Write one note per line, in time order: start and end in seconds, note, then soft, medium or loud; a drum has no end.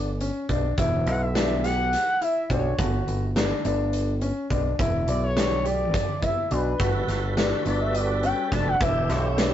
0.00 0.29 G1 medium
0.00 0.59 D5 loud
0.21 0.44 C#4 medium
0.21 closed hi-hat medium
0.49 0.71 B1 medium
0.49 0.72 D4 medium
0.49 kick medium
0.49 closed hi-hat medium
0.78 1.07 E1 loud
0.78 1.24 E4 medium
0.78 kick loud
0.78 closed hi-hat medium
1.07 1.94 B1 medium
1.07 1.23 F#5 loud
1.07 closed hi-hat medium
1.22 1.63 E5 loud
1.35 1.58 D4 medium
1.35 snare loud
1.35 closed hi-hat medium
1.64 2.09 G4 medium
1.64 2.23 F#5 loud
1.64 snare soft
1.64 closed hi-hat medium
1.93 snare soft
1.93 closed hi-hat medium
2.21 2.44 E4 medium
2.21 2.49 E5 medium
2.21 closed hi-hat medium
2.50 2.72 B1 medium
2.50 2.73 D4 medium
2.50 3.03 C#5 medium
2.50 kick medium
2.50 closed hi-hat medium
2.79 3.01 G1 loud
2.79 3.25 F#4 medium
2.79 kick loud
2.79 closed hi-hat medium
3.07 3.51 G1 medium
3.07 closed hi-hat medium
3.36 3.59 D4 medium
3.36 snare loud
3.36 closed hi-hat medium
3.65 4.31 G1 medium
3.65 4.11 D4 medium
3.65 closed hi-hat medium
3.93 closed hi-hat medium
4.21 4.45 C#4 medium
4.21 closed hi-hat medium
4.50 4.72 B1 medium
4.50 4.73 D4 medium
4.50 kick medium
4.50 closed hi-hat medium
4.79 5.08 E1 loud
4.79 5.25 E4 medium
4.79 kick loud
4.79 closed hi-hat medium
5.08 5.96 B1 medium
5.08 5.22 D5 medium
5.08 closed hi-hat medium
5.24 5.67 C#5 loud
5.36 5.59 D4 medium
5.36 snare loud
5.36 closed hi-hat medium
5.65 6.11 G4 medium
5.65 6.24 D5 loud
5.65 closed hi-hat medium
5.94 kick loud
5.94 snare soft
5.94 closed hi-hat medium
6.22 6.45 E4 medium
6.22 6.53 E5 loud
6.22 kick medium
6.22 closed hi-hat medium
6.51 6.73 B1 medium
6.51 6.74 D4 medium
6.51 7.09 B4 medium
6.51 closed hi-hat medium
6.79 7.02 G1 medium
6.79 8.76 G3 medium
6.79 8.76 F#4 medium
6.79 7.26 F#4 medium
6.79 8.76 A4 medium
6.79 8.77 B4 medium
6.79 kick loud
6.79 closed hi-hat medium
7.08 7.52 G1 medium
7.08 snare soft
7.08 closed hi-hat medium
7.37 7.60 D4 medium
7.37 snare loud
7.37 closed hi-hat medium
7.66 8.31 G1 medium
7.66 8.12 D4 medium
7.66 7.79 D5 medium
7.66 closed hi-hat medium
7.80 7.97 E5 medium
7.95 8.26 D5 loud
7.95 closed hi-hat medium
8.23 8.46 C#4 medium
8.23 8.52 G5 loud
8.23 closed hi-hat medium
8.52 8.74 F1 medium
8.52 8.75 D4 medium
8.52 8.70 A5 loud
8.52 kick medium
8.52 snare soft
8.52 closed hi-hat medium
8.68 8.83 F#5 medium
8.80 9.09 E1 loud
8.80 9.54 E3 medium
8.80 9.54 D4 medium
8.80 9.54 E4 medium
8.80 9.27 E4 medium
8.80 9.54 G4 medium
8.80 9.13 E5 loud
8.80 kick loud
8.80 closed hi-hat medium
9.09 9.54 B1 medium
9.09 9.54 C#5 medium
9.09 snare soft
9.09 closed hi-hat medium
9.38 9.54 D4 medium
9.38 snare loud
9.38 closed hi-hat medium